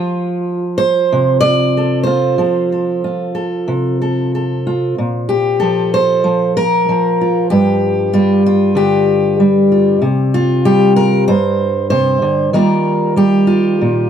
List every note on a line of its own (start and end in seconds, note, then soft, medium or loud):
0.00 2.38 F3 medium
0.00 1.44 F4 medium
0.78 1.40 C5 loud
1.12 2.35 C3 medium
1.41 2.03 D5 loud
1.77 2.38 A4 medium
2.03 3.04 F4 medium
2.03 4.95 C5 medium
2.38 5.61 F3 medium
2.38 2.71 A4 medium
2.72 3.34 A4 soft
3.04 4.66 F4 medium
3.35 3.99 A4 medium
3.68 4.94 C3 medium
4.02 4.33 A4 soft
4.35 4.95 A4 soft
4.67 4.94 F4 medium
4.98 7.48 A#2 medium
5.29 5.93 G4 medium
5.60 6.23 F3 medium
5.60 6.56 A4 medium
5.94 6.56 C5 medium
6.24 6.88 F3 medium
6.57 7.50 A#4 loud
6.89 8.14 F3 medium
7.21 7.48 F4 soft
7.50 10.02 G2 medium
7.50 8.75 G4 medium
8.13 9.39 G3 medium
8.13 8.45 F4 medium
8.46 9.40 F4 medium
8.75 9.98 D3 medium
8.75 10.02 G4 medium
9.40 10.37 G3 medium
9.72 9.99 F4 soft
10.02 11.28 C3 medium
10.34 11.29 F4 medium
10.65 12.51 G3 medium
10.65 10.96 G4 medium
10.96 11.27 A#4 loud
11.28 12.54 G2 medium
11.28 11.89 C5 loud
11.90 12.22 C3 medium
11.90 12.54 C5 loud
12.22 12.53 D3 medium
12.53 14.10 D#3 medium
12.53 13.15 G3 medium
12.53 14.10 A#3 medium
12.53 13.47 F4 soft
12.53 13.17 A#4 medium
13.16 14.10 G3 medium
13.16 14.10 G4 medium
13.47 14.10 F4 medium
13.81 14.10 A#2 medium